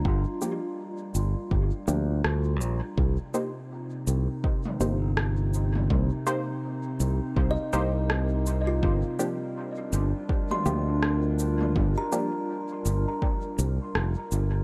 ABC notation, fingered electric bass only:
X:1
M:4/4
L:1/8
Q:"Swing 16ths" 1/4=82
K:Cm
V:1 name="Fingered electric bass" clef=bass
G,,, z2 G,,, G,,, D,, D,, B,,, | C,, z2 C,, z G,,,3 | C,, z2 C,, C,, C,,3 | G,,, z2 G,,, z D,,3 |
G,,, z2 G,,, z C,, F,,, G,,, |]